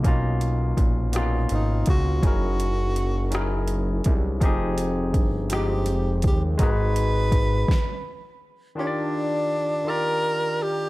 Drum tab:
HH |xxxxxx|xxxxxx|xxxxxx|xxx---|
SD |---r--|---r--|---r--|---o--|
BD |o-o--o|o----o|o-o--o|o-oo--|

HH |------|
SD |------|
BD |------|